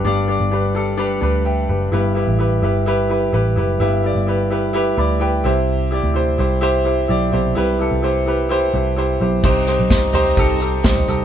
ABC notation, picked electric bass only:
X:1
M:4/4
L:1/16
Q:1/4=128
K:Clyd
V:1 name="Picked electric bass" clef=bass
G,,,3 G,,,6- G,,, D,,4 F,,,2 | G,,,3 A,,,3 G,,,6 A,,,2 F,,,2 | G,,,3 G,,,6- G,,, D,,4 C,,2- | C,,3 D,,3 C,,6 B,,,2 B,,,2 |
C,,3 C,,6- C,, C,,4 B,,,2 | C,,3 B,,, C,,4 C,,4 C,,2 C,,2 |]